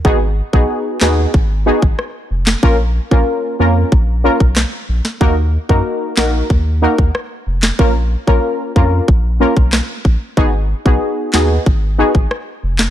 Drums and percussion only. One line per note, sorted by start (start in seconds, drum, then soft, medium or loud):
0.05 kick loud
0.53 kick medium
1.01 snare loud
1.01 clap medium
1.34 kick loud
1.82 kick loud
1.99 cross-stick medium
2.47 snare loud
2.47 clap medium
2.63 kick loud
3.11 kick medium
3.92 kick loud
4.40 kick loud
4.56 cross-stick loud
4.56 snare loud
4.56 clap loud
5.05 snare medium
5.21 kick loud
5.69 kick medium
6.17 snare loud
6.17 clap medium
6.50 kick loud
6.98 kick medium
7.15 cross-stick loud
7.63 snare loud
7.63 clap medium
7.79 kick loud
8.27 kick medium
8.76 kick medium
9.08 kick loud
9.57 kick loud
9.73 cross-stick loud
9.73 snare loud
9.73 clap medium
10.05 kick medium
10.37 kick loud
10.86 kick medium
11.33 snare loud
11.33 clap medium
11.66 kick loud
12.15 kick medium
12.31 cross-stick loud
12.79 snare loud
12.79 clap medium